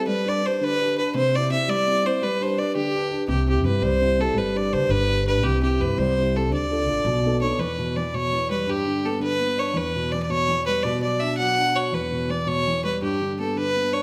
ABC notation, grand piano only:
X:1
M:6/8
L:1/8
Q:3/8=111
K:Gmix
V:1 name="Grand piano"
G, [DGB] [DGB] D, [DGB] [DGB] | C, [CEG] [CEG] G, [CEG] [CEG] | G, [DGB] [DGB] D, [DGB] [DGB] | C, [CEG] [CEG] G, [CEG] [CEG] |
G, [DGB] [DGB] D, [DGB] [DGB] | C, [CEG] [CEG] G, [CEG] [CEG] | D, [DFA] [DFA] B,, [B,^DA] [B,DA] | [K:Edor] E,, B,, E, B,, E, G, |
G,, D, B, D, B, D | E,, B,, E, B,, E, G, | B,, F, D F, D F | E,, B,, E, B,, E, G, |
G,, D, B, D, B, D |]